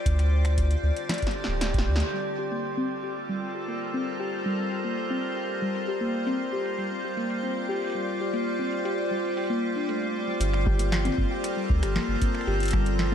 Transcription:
0.00 0.89 F4 medium
0.00 0.83 C5 medium
0.00 3.78 D5 medium
0.06 0.75 D2 loud
0.06 2.13 D3 medium
0.06 kick medium
0.06 closed hi-hat medium
0.19 finger snap soft
0.19 closed hi-hat soft
0.37 3.06 C4 medium
0.37 3.78 G4 medium
0.45 finger snap medium
0.45 closed hi-hat medium
0.58 kick medium
0.58 closed hi-hat medium
0.71 closed hi-hat soft
0.83 0.91 D2 medium
0.96 closed hi-hat medium
1.09 snare medium
1.09 snare loud
1.09 closed hi-hat medium
1.14 closed hi-hat medium
1.18 closed hi-hat soft
1.22 kick medium
1.22 closed hi-hat soft
1.27 snare medium
1.27 closed hi-hat soft
1.31 closed hi-hat soft
1.44 snare medium
1.48 1.88 D1 loud
1.61 snare medium
1.61 closed hi-hat medium
1.74 kick loud
1.74 closed hi-hat soft
1.78 snare medium
1.87 2.03 D2 medium
1.96 snare loud
2.00 closed hi-hat soft
2.13 2.22 G3 medium
2.13 13.15 G3 medium
2.13 closed hi-hat medium
2.18 13.15 F4 medium
2.39 2.47 G4 medium
2.39 7.02 A4 medium
2.52 2.60 A#3 medium
2.52 closed hi-hat soft
2.65 closed hi-hat medium
2.77 2.86 C4 medium
2.95 7.92 A#4 medium
3.03 3.16 G4 medium
3.03 closed hi-hat soft
3.16 13.15 C5 medium
3.16 closed hi-hat medium
3.29 3.38 G3 medium
3.55 3.64 G4 medium
3.68 3.77 A#3 medium
3.68 closed hi-hat medium
3.81 closed hi-hat soft
3.94 4.03 C4 medium
4.20 4.32 G4 medium
4.20 closed hi-hat medium
4.33 closed hi-hat soft
4.46 4.54 G3 medium
4.59 closed hi-hat soft
4.72 4.80 G4 medium
4.72 closed hi-hat medium
4.85 4.93 A#3 medium
5.10 5.19 C4 medium
5.10 closed hi-hat soft
5.23 closed hi-hat medium
5.36 5.49 G4 medium
5.62 5.71 G3 medium
5.75 closed hi-hat medium
5.88 5.97 G4 medium
5.88 closed hi-hat soft
6.01 6.09 A#3 medium
6.27 6.35 C4 medium
6.27 closed hi-hat medium
6.40 closed hi-hat soft
6.53 6.65 G4 loud
6.66 closed hi-hat soft
6.73 12.02 D5 medium
6.78 6.87 G3 medium
6.78 closed hi-hat medium
7.04 7.13 G4 medium
7.17 7.26 A#3 medium
7.17 closed hi-hat soft
7.30 closed hi-hat medium
7.43 7.52 C4 medium
7.69 7.81 G4 medium
7.82 closed hi-hat soft
7.84 closed hi-hat soft
7.87 closed hi-hat soft
7.90 closed hi-hat medium
7.92 8.03 G3 medium
7.92 closed hi-hat medium
8.21 8.29 G4 medium
8.34 8.42 A#3 medium
8.34 closed hi-hat medium
8.47 closed hi-hat soft
8.59 8.68 C4 medium
8.72 closed hi-hat soft
8.85 8.98 G4 medium
8.85 closed hi-hat medium
9.11 9.20 G3 medium
9.24 closed hi-hat soft
9.27 closed hi-hat soft
9.31 closed hi-hat soft
9.34 9.46 G4 medium
9.34 closed hi-hat soft
9.37 closed hi-hat medium
9.40 closed hi-hat soft
9.44 closed hi-hat soft
9.47 9.59 A#3 medium
9.47 closed hi-hat soft
9.76 9.84 D4 medium
9.89 9.97 A3 loud
9.89 closed hi-hat medium
10.02 10.07 C4 medium
10.02 closed hi-hat soft
10.28 10.33 G3 medium
10.40 11.10 G1 loud
10.40 10.49 G3 medium
10.40 closed hi-hat medium
10.54 finger snap medium
10.63 10.75 G4 medium
10.63 13.15 A4 medium
10.63 13.15 A#4 medium
10.63 kick loud
10.63 high tom medium
10.79 10.88 A#3 medium
10.79 closed hi-hat loud
10.92 finger snap medium
10.92 snare loud
11.05 11.14 C4 medium
11.05 closed hi-hat medium
11.05 high tom medium
11.18 11.26 G1 medium
11.18 kick loud
11.31 11.43 G4 loud
11.44 finger snap medium
11.44 closed hi-hat medium
11.57 11.66 G3 medium
11.70 11.84 D2 medium
11.70 kick loud
11.83 11.98 G1 loud
11.83 11.91 G4 medium
11.83 finger snap medium
11.83 closed hi-hat loud
11.96 12.04 A#3 medium
11.96 snare loud
12.08 12.16 G1 medium
12.22 12.30 C4 medium
12.22 kick loud
12.22 closed hi-hat medium
12.35 finger snap medium
12.41 finger snap soft
12.47 13.15 G1 loud
12.47 12.60 G4 loud
12.47 finger snap soft
12.54 finger snap soft
12.60 closed hi-hat soft
12.63 closed hi-hat medium
12.65 closed hi-hat medium
12.68 closed hi-hat medium
12.71 12.82 G3 medium
12.71 finger snap medium
12.71 kick loud
12.71 closed hi-hat medium
12.71 high tom medium
12.86 closed hi-hat medium
12.99 13.08 G4 medium
12.99 snare loud

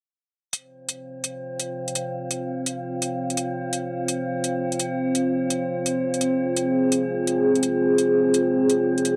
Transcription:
0.53 9.16 C4 medium
0.53 9.16 F4 medium
0.53 6.19 F5 medium
0.53 closed hi-hat medium
0.89 closed hi-hat medium
1.24 closed hi-hat medium
1.60 closed hi-hat medium
1.88 closed hi-hat soft
1.95 closed hi-hat medium
2.31 closed hi-hat medium
2.66 closed hi-hat medium
3.02 closed hi-hat medium
3.30 closed hi-hat soft
3.37 closed hi-hat medium
3.73 closed hi-hat medium
4.08 closed hi-hat medium
4.44 closed hi-hat medium
4.72 closed hi-hat soft
4.79 closed hi-hat medium
5.15 closed hi-hat medium
5.50 closed hi-hat medium
5.86 closed hi-hat medium
6.14 closed hi-hat soft
6.21 9.16 G#4 medium
6.21 closed hi-hat medium
6.57 closed hi-hat medium
6.92 closed hi-hat medium
7.27 closed hi-hat medium
7.56 closed hi-hat soft
7.63 closed hi-hat medium
7.98 closed hi-hat medium
8.34 closed hi-hat medium
8.70 closed hi-hat medium
8.98 closed hi-hat soft
9.05 closed hi-hat medium

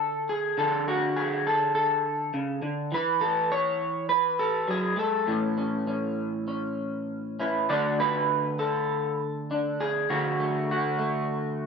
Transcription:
0.00 0.53 D3 medium
0.00 0.57 A4 loud
0.29 1.15 G#4 medium
0.57 2.33 D3 medium
0.57 0.87 A4 medium
0.88 1.46 F#4 medium
1.17 2.05 G#4 medium
1.47 1.74 A4 medium
1.75 2.92 A4 medium
2.34 2.62 C#3 medium
2.62 2.92 D3 medium
2.92 4.67 E3 medium
2.92 3.51 B4 loud
3.21 3.50 A4 medium
3.52 4.09 C#5 loud
4.09 4.98 B4 loud
4.39 4.69 A4 medium
4.68 4.96 F#3 medium
4.68 4.99 G#4 loud
4.96 5.27 G#3 medium
4.96 7.40 A4 medium
5.27 7.66 A2 medium
5.27 7.70 E3 soft
5.27 5.56 C#4 soft
5.58 5.86 C#4 soft
5.87 6.46 C#4 soft
6.48 7.38 C#4 soft
7.40 7.66 C#4 soft
7.40 7.67 E4 soft
7.40 7.67 B4 soft
7.69 10.06 D3 medium
7.69 10.40 A3 soft
7.69 9.50 D4 medium
7.69 8.59 F#4 medium
7.69 8.00 D5 medium
8.00 9.20 B4 loud
8.59 9.79 A4 medium
9.51 10.07 D4 medium
9.80 10.70 G#4 medium
10.10 11.66 D3 medium
10.10 10.69 F#4 medium
10.40 10.98 A3 soft
10.71 11.66 F#4 medium
10.99 11.66 A3 medium

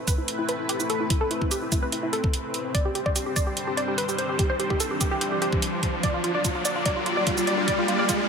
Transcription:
0.00 2.71 A3 medium
0.00 6.00 C4 medium
0.00 2.71 E4 medium
0.00 2.71 B4 medium
0.00 riser medium
0.07 0.16 B4 medium
0.07 kick loud
0.07 closed hi-hat medium
0.07 shaker medium
0.18 0.26 E4 medium
0.28 closed hi-hat medium
0.39 0.47 E4 medium
0.49 0.57 B4 medium
0.49 closed hi-hat medium
0.59 0.67 E4 medium
0.69 0.78 G4 medium
0.69 closed hi-hat medium
0.80 0.88 E4 medium
0.80 shaker soft
0.90 0.98 A4 loud
0.90 closed hi-hat medium
1.00 1.08 E4 medium
1.10 1.19 E4 medium
1.10 kick loud
1.10 closed hi-hat medium
1.21 1.29 A4 medium
1.31 1.39 E4 medium
1.31 closed hi-hat medium
1.42 1.49 E4 medium
1.42 kick medium
1.51 1.60 G4 medium
1.51 closed hi-hat medium
1.51 shaker medium
1.62 1.70 E4 medium
1.72 1.80 E4 medium
1.72 kick loud
1.72 closed hi-hat medium
1.72 shaker medium
1.82 1.90 B4 medium
1.92 2.01 E4 medium
1.92 closed hi-hat medium
2.03 2.11 E4 medium
2.13 2.67 A4 loud
2.13 closed hi-hat medium
2.24 kick loud
2.33 closed hi-hat medium
2.54 closed hi-hat medium
2.75 6.00 G3 medium
2.75 8.29 D4 medium
2.75 6.00 C5 medium
2.75 2.83 D5 loud
2.75 kick loud
2.75 closed hi-hat medium
2.85 2.93 G4 medium
2.95 3.04 G4 medium
2.95 closed hi-hat medium
3.06 3.14 D5 medium
3.06 kick medium
3.16 3.24 G4 medium
3.16 closed hi-hat medium
3.16 shaker medium
3.26 3.34 G4 medium
3.36 3.45 D5 medium
3.36 kick loud
3.36 closed hi-hat medium
3.36 shaker medium
3.47 3.55 G4 medium
3.57 closed hi-hat medium
3.67 3.75 G4 medium
3.77 3.86 D5 medium
3.77 closed hi-hat medium
3.88 3.96 G4 medium
3.98 4.06 B4 medium
3.98 closed hi-hat medium
4.09 4.16 G4 medium
4.09 shaker medium
4.18 4.27 C5 medium
4.18 closed hi-hat medium
4.29 4.37 G4 medium
4.39 4.48 G4 medium
4.39 kick loud
4.39 closed hi-hat medium
4.50 4.58 C5 medium
4.59 4.68 G4 medium
4.59 closed hi-hat medium
4.70 4.78 G4 medium
4.70 kick medium
4.80 4.89 A4 medium
4.80 closed hi-hat medium
4.80 shaker medium
4.91 4.99 G4 medium
5.01 5.09 G4 medium
5.01 kick loud
5.01 closed hi-hat medium
5.01 shaker medium
5.11 5.19 G4 medium
5.21 5.30 G4 medium
5.21 closed hi-hat medium
5.32 5.40 G4 medium
5.42 5.96 G4 medium
5.42 closed hi-hat medium
5.53 kick loud
5.62 closed hi-hat medium
5.83 kick medium
5.83 closed hi-hat soft
6.03 8.29 A#3 medium
6.03 8.29 F4 medium
6.03 8.29 D5 medium
6.03 6.12 D5 medium
6.03 kick loud
6.03 closed hi-hat medium
6.14 6.22 F4 medium
6.24 6.33 F4 medium
6.24 closed hi-hat medium
6.35 6.43 D5 medium
6.44 6.53 F4 medium
6.44 kick loud
6.44 closed hi-hat medium
6.44 shaker medium
6.55 6.63 F4 medium
6.65 6.74 D5 medium
6.65 closed hi-hat medium
6.65 shaker medium
6.76 6.84 F4 medium
6.86 6.94 D5 medium
6.86 kick loud
6.86 closed hi-hat medium
6.96 7.04 F4 medium
7.06 7.15 F4 medium
7.06 closed hi-hat medium
7.17 7.25 D5 medium
7.27 7.35 F4 medium
7.27 kick loud
7.27 closed hi-hat medium
7.37 7.45 F4 medium
7.37 shaker medium
7.47 7.56 D5 medium
7.47 closed hi-hat soft
7.58 7.66 F4 medium
7.68 7.76 D5 medium
7.68 kick loud
7.68 closed hi-hat medium
7.78 7.86 F4 medium
7.88 7.97 F4 medium
7.88 closed hi-hat soft
7.99 8.07 D5 medium
8.09 8.17 F4 medium
8.09 kick loud
8.09 closed hi-hat medium
8.09 shaker medium
8.20 8.28 F4 medium

